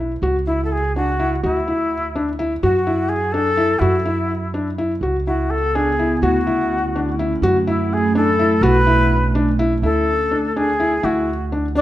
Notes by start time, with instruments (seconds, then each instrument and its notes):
Already playing: upright bass B1
0.00 felt piano E4
0.22 upright bass C#2, felt piano F#4
0.46 flute E4, felt piano E4
0.65 flute A4
0.72 flute G#4
0.96 felt piano D4, flute F#4
1.20 felt piano E4
1.43 upright bass D2, flute E4, felt piano F#4
1.68 felt piano E4
2.16 felt piano D4
2.39 felt piano E4
2.63 upright bass F#2, flute F#4, felt piano F#4
2.87 felt piano E4
3.09 flute G#4
3.32 felt piano D4, flute A4
3.57 felt piano E4
3.79 upright bass F#2, flute E4, felt piano F#4
4.05 felt piano E4
4.54 felt piano D4
4.78 felt piano E4
5.01 upright bass C#2, ambient pad C#3 B3 E4, felt piano F#4
5.26 felt piano E4, flute F#4
5.50 flute A4
5.75 felt piano D4, flute G#4
5.99 felt piano E4
6.22 upright bass D2, ambient pad D3 A3 C#4, flute F#4, felt piano F#4
6.47 felt piano E4
6.96 felt piano D4
7.19 felt piano E4
7.42 upright bass F#2, ambient pad A2 A3 E4, felt piano F#4
7.67 felt piano E4, flute E4
7.93 flute G#4
8.15 felt piano D4, flute A4
8.39 felt piano E4
8.61 upright bass B1, ambient pad A3 C#4 D4, felt piano F#4, flute B4
8.87 felt piano E4
9.35 felt piano D4
9.59 felt piano E4
9.82 upright bass D2, felt piano E4, flute A4
10.31 felt piano D4
10.56 felt piano D4, flute G#4
10.80 felt piano E4
11.03 upright bass D2, felt piano E4, flute F#4
11.52 felt piano D4
11.75 felt piano D4, flute D4